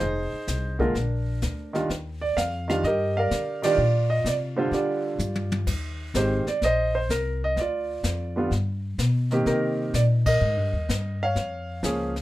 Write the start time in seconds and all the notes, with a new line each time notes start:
Already playing: D#4 G#4 C5
0.00 F1, brush sweep, snare
0.33 muted upright bass stroke
0.48 C2, snare, hi-hat pedal
0.79 D3 G#3 A#3 F4 A#4, kick
0.84 D4
0.95 A#1, brush sweep, snare
1.42 D2, snare, hi-hat pedal
1.73 D#3 G3 D4 F4, snare
1.89 D#2, brush sweep, snare
2.21 D5
2.37 F2 F5, snare, hi-hat pedal
2.68 D#3 G3 D4 F4 F5, snare
2.83 G2 G4 A#4 D#5, brush sweep, snare
3.17 A#4 D5 F5
3.31 D3, snare, hi-hat pedal
3.62 D#3 G3 D4 F4 G4 D5, snare, ride
3.78 A#2, brush sweep
4.10 D#5
4.24 C3 D5, snare, hi-hat pedal
4.56 D3 G3 D4 F4 C5
4.71 D3 F4 G4 D5, brush sweep, snare
5.19 G2, hi-hat pedal, high tom
5.35 high tom
5.52 high tom
5.66 D#2, brush sweep, kick, snare, crash
6.14 G#1 D#3 G#3 C4 G4 C5, snare, hi-hat pedal
6.47 D5, snare
6.62 A#1 D#5, brush sweep, snare
6.66 C5
6.95 C5
7.09 C2 A#4, snare, hi-hat pedal
7.44 D#5
7.56 D2 D5, brush sweep, snare
7.61 F4
8.03 F2, snare, hi-hat pedal
8.36 D3 G3 B3 F4
8.51 G2, brush sweep, snare
8.98 B2, snare, hi-hat pedal
9.31 D#3 A#3 C4 G4, snare
9.46 C3 D#4 A#4, brush sweep, snare
9.94 A#2 D5, snare, hi-hat pedal
10.26 A#4 D#5, kick, crash
10.41 G#2, brush sweep
10.57 G2
10.73 D#2
10.89 G2, snare, hi-hat pedal
11.23 C#5 F5
11.35 F2, brush sweep, snare
11.83 C#2 F3 A#3 C#4 G#4, snare, hi-hat pedal
12.16 snare